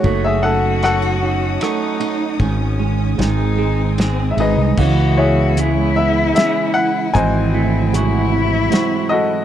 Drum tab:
CC |------|------|x-----|------|
RD |x-x-xx|x-x-xx|------|------|
HH |------|------|--x-x-|x-x-x-|
SD |--r-r-|--o-o-|----o-|----o-|
BD |o-----|o-----|o-----|o-----|